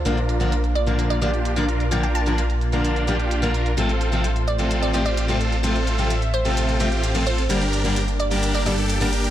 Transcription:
<<
  \new Staff \with { instrumentName = "Synth pluck" } { \time 4/4 \key f \major \tempo 4 = 129 r4. d''8 r16 d''16 d''16 r4 r16 | g''16 g''16 a''8. r2 r8. | r4. d''8 r16 d''16 d''16 d''8 r8. | r4. c''4 r4 c''8 |
r4. d''8 r16 d''16 d''16 r4 r16 | }
  \new Staff \with { instrumentName = "Supersaw synth" } { \time 4/4 \key f \major <d' f' bes'>8. <d' f' bes'>16 r8. <d' f' bes'>8. <d' f' g'>8. <d' f' bes'>8 r16 | <d' f' bes'>8. <d' f' bes'>16 r8. <d' f' bes'>8. <d' f' g'>8. <d' f' bes'>8 r16 | <c' f' a'>8. <c' f' a'>16 r8. <c' f' a'>8. <c' f' g'>8. <c' f' a'>8 r16 | <c' f' a'>8. <c' f' a'>16 r8. <c' f' a'>8. <c' f' g'>8. <c' f' a'>8 r16 |
<d' g' bes'>8. <d' g' bes'>16 r8. <d' g' bes'>8. <d' g' a'>8. <d' g' bes'>8 r16 | }
  \new Staff \with { instrumentName = "Analog synth pad" } { \time 4/4 \key f \major << { <d' f'>1~ | <d' f'>1 | c''1 | e''1 |
<bes d'>1 | } \\ { bes1~ | bes1 | a1~ | a1 |
g1 | } >> }
  \new Staff \with { instrumentName = "Steel-string acoustic guitar" } { \clef bass \time 4/4 \key f \major <d f bes d'>16 r8 <d f bes d'>16 r8. <d f bes d'>8. <d f bes d'>16 r8 <d f bes d'>16 r8 | <d f bes d'>16 r8 <d f bes d'>16 r8. <d f bes d'>8. <d f bes d'>16 r8 <d f bes d'>16 r8 | <c f a c'>16 r8 <c f a c'>16 r8. <c f a c'>8. <c f a c'>16 r8 <c f a c'>16 r8 | <c f a c'>16 r8 <c f a c'>16 r8. <c f a c'>8. <c f a c'>16 r8 <c f a c'>16 r8 |
<d g bes d'>16 r8 <d g bes d'>16 r8. <d g bes d'>8. <d g bes d'>16 r8 <d g bes d'>16 r8 | }
  \new Staff \with { instrumentName = "Detuned saw bass" } { \clef bass \time 4/4 \key f \major bes,,1~ | bes,,1 | a,,1~ | a,,1 |
g,,1 | }
  \new DrumStaff \with { instrumentName = "Drums" } \drummode { \time 4/4 hh16 hh16 hh16 hh16 hh16 hh16 hh16 hh16 hh16 hh16 hh16 hh16 hh16 hh16 hh16 hh16 | hh16 hh16 hh16 hh16 hh16 hh16 hh16 hh16 hh16 hh16 hh16 hh16 hh16 hh16 hh16 hh16 | hh16 hh16 hh16 hh16 hh16 hh16 hh16 hh16 hh16 hh16 hh16 hh16 hh16 hh16 hh16 hh16 | hh16 hh16 hh16 hh16 hh16 hh16 hh16 hh16 hh16 hh16 hh16 hh16 hh16 hh16 hh16 hh16 |
hh16 hh16 hh16 hh16 hh16 hh16 hh16 hh16 hh16 hh16 hh16 hh16 hh16 hh16 hh16 hh16 | }
>>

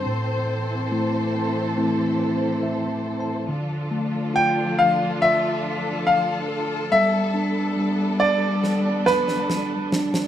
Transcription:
<<
  \new Staff \with { instrumentName = "Grand piano" } { \time 4/4 \key d \dorian \tempo 4 = 70 c''4 r2. | r4 g''8 f''8 e''4 f''4 | e''4. d''4 b'4 r8 | }
  \new Staff \with { instrumentName = "String section" } { \time 4/4 \key d \dorian << { c''1 | a'1~ | a'1 | } \\ { <e c' a'>1 | <f d' f'>1 | <g b d'>1 | } >> }
  \new Staff \with { instrumentName = "Tine electric piano" } { \time 4/4 \key d \dorian << { r2 r8 c''8 \tuplet 3/2 { e''4 a''8 } | r1 | r1 | } \\ { a,4 <a c' e'>4 <a c' e'>4 r4 | d8 a8 f'2 r8 a'8 | g8 d'8 g2 r8 d'8 | } >> }
  \new DrumStaff \with { instrumentName = "Drums" } \drummode { \time 4/4 r4 r4 r4 r4 | r4 r4 r4 r4 | r4 r4 sn8 sn16 sn16 sn8 sn16 sn16 | }
>>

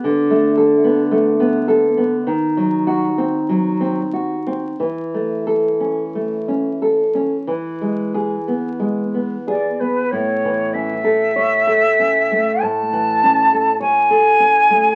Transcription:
<<
  \new Staff \with { instrumentName = "Flute" } { \time 4/4 \key a \major \tempo 4 = 48 r1 | r2. r8 d''16 b'16 | cis''8 e''4. a''4 gis''4 | }
  \new Staff \with { instrumentName = "Nylon-string guitar" } { \time 4/4 \key a \major d16 a16 a'16 b16 a16 b16 a'16 b16 dis16 fis16 fis'16 bis16 fis16 bis16 fis'16 bis16 | e16 a16 a'16 cis'16 a16 cis'16 a'16 cis'16 e16 gis16 gis'16 b16 gis16 b16 gis'16 b16 | a,16 e16 cis'16 a'16 cis''16 a'16 cis'16 a16 a,16 e16 cis'16 a'16 cis''16 a'16 cis'16 a16 | }
>>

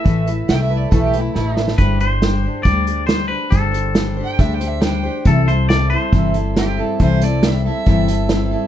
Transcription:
<<
  \new Staff \with { instrumentName = "Fiddle" } { \time 4/4 \key c \major \tempo 4 = 138 r4 \tuplet 3/2 { g''8 e''8 d''8 a'8 g'8 e'8 } e'8. r16 | r1 | r4 \tuplet 3/2 { r4 g''8 e''8 g''8 e''8 } g''8. r16 | r2. g'8 a'8 |
c''8 d''8 e''8 e''2~ e''16 r16 | }
  \new Staff \with { instrumentName = "Clean electric guitar" } { \time 4/4 \key c \major e''2~ e''8 r4. | b'8 c''4. d''4 c''8 b'8 | a'2. r4 | a'8 c''8 d''8 c''2~ c''8~ |
c''2. r4 | }
  \new Staff \with { instrumentName = "Steel-string acoustic guitar" } { \time 4/4 \key c \major <a, e a e' a' b'>8 <a e' a' b'>8 <a e' a' b'>8 <a e' a' b'>8 <a, e a e' a' b'>8 <a e' a' b'>8 <a e' a' b'>8 <a e' a' b'>8 | <g d' g' c''>8 <d' g' c''>8 <g d' g' c''>8 <d' g' c''>8 <g d' g' c''>8 <d' g' c''>8 <g d' g' c''>8 <d' g' c''>8 | <g d' g' c''>8 <d' g' c''>8 <g d' g' c''>8 <d' g' c''>8 <g d' g' c''>8 <d' g' c''>8 <g d' g' c''>8 <d' g' c''>8 | <c e g c' e' a'>8 <g c' e' a'>8 <g c' e' a'>8 <g c' e' a'>8 <c e g c' e' a'>8 <g c' e' a'>8 <g c' e' a'>8 <g c' e' a'>8 |
<c e g c' e' a'>8 <g c' e' a'>8 <g c' e' a'>8 <g c' e' a'>8 <c e g c' e' a'>8 <g c' e' a'>8 <g c' e' a'>8 <g c' e' a'>8 | }
  \new Staff \with { instrumentName = "Upright bass" } { \clef bass \time 4/4 \key c \major a,,4 c,4 b,,4 a,,4 | g,,2 d,2 | g,,2 d,2 | c,2 g,,2 |
c,2 g,,2 | }
  \new DrumStaff \with { instrumentName = "Drums" } \drummode { \time 4/4 <hh bd>8 hh8 <hh sn>4 <hh bd>8 hh8 sn8 sn16 sn16 | <hh bd>8 hh8 <hh sn>4 <hh bd>8 hh8 <hh sn>4 | <hh bd>8 hh8 <hh sn>4 <hh bd>8 hh8 <hh sn>4 | <hh bd>8 hh8 <hh sn>4 <hh bd>8 hh8 <hh sn>4 |
<hh bd>8 hh8 <hh sn>4 <hh bd>8 hh8 <hh sn>4 | }
>>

